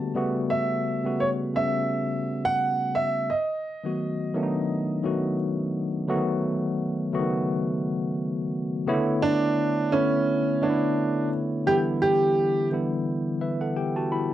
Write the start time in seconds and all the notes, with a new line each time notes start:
Already playing: D3 G3 A3 A#3 B3 D4 F#4 G4 A5
0.14 C#3 G3 A3 B3 F#4
0.50 E5
1.04 C#3 G3 A3 B3 F#4
1.20 C#5
1.54 C#3 G3 A3 B3 C#4 E5
2.45 F#5
2.95 E5
3.30 D#5
3.84 D#3 F#3 A3 B3 F#4
4.34 D#3 F#3 A3 B3 D4
4.43 D#4
5.03 D#3 F#3 A3 B3 F#4
6.08 D3 F#3 A3 B3 F#4
6.14 D#3
7.12 C#3 F#3 A3 B3 F#4
7.19 D#3
8.87 C#3 A3 B3 E4 C#5
8.93 D3
9.22 D4
9.92 D3 A3 B3 C#4 E4
10.61 D3 A3 B3 D4 C#5
10.70 E4
11.66 D3 E3 G3 B3 E4 G4
12.02 G4
12.71 D3 E3 G3 B3 E4
13.41 B4 E5
13.61 A4 F#5
13.76 G4 G5
13.96 F#4 A5
14.12 E4 B5